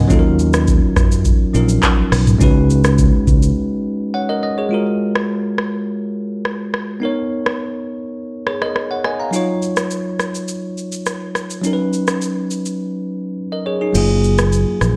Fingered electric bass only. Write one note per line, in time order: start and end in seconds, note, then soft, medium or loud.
0.10 0.79 D#2 loud
0.96 1.31 F#2 loud
1.54 1.77 A#1 medium
2.12 2.35 B1 medium
2.41 3.10 C#2 loud
3.27 3.50 C#2 medium
13.95 14.64 F#1 loud
14.81 14.96 A#1 medium